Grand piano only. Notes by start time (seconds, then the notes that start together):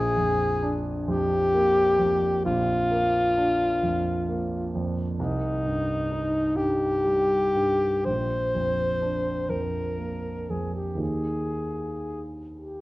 Already playing: A#1
0.17 F2
0.63 D4
1.08 F2
1.54 A#3
1.99 F2
2.46 A#1
2.91 A#3
3.38 D4
3.83 F2
4.28 A#3
4.75 F2
5.19 C2
5.65 G2
6.11 D#4
6.56 G2
7.04 G3
7.55 G2
8.06 A#1
8.55 F2
9.02 D4
9.49 F2
9.98 A#3
10.50 F2
10.95 D#2 A#3 D#4 G4